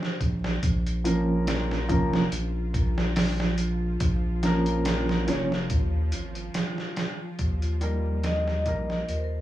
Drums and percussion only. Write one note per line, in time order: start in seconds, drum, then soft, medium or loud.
0.03 snare soft
0.21 kick medium
0.21 closed hi-hat medium
0.44 snare soft
0.63 kick loud
0.63 closed hi-hat medium
0.86 closed hi-hat soft
1.05 closed hi-hat medium
1.47 snare loud
1.47 closed hi-hat medium
1.71 snare soft
1.89 kick medium
1.89 closed hi-hat medium
2.14 snare medium
2.32 closed hi-hat medium
2.74 kick medium
2.74 closed hi-hat medium
2.98 snare soft
3.16 snare loud
3.16 open hi-hat medium
3.40 snare medium
3.58 closed hi-hat medium
4.00 kick loud
4.00 closed hi-hat medium
4.43 snare soft
4.43 closed hi-hat medium
4.66 closed hi-hat soft
4.85 snare loud
4.85 closed hi-hat medium
5.09 snare medium
5.28 snare medium
5.28 closed hi-hat medium
5.52 snare soft
5.70 kick loud
5.70 closed hi-hat medium
6.12 closed hi-hat medium
6.35 closed hi-hat soft
6.54 snare loud
6.54 closed hi-hat medium
6.78 snare soft
6.96 snare loud
6.96 closed hi-hat medium
7.39 kick loud
7.39 closed hi-hat medium
7.62 closed hi-hat soft
7.81 closed hi-hat medium
8.23 snare loud
8.23 closed hi-hat medium
8.47 snare soft
8.66 kick loud
8.66 closed hi-hat medium
8.90 snare medium
9.09 closed hi-hat medium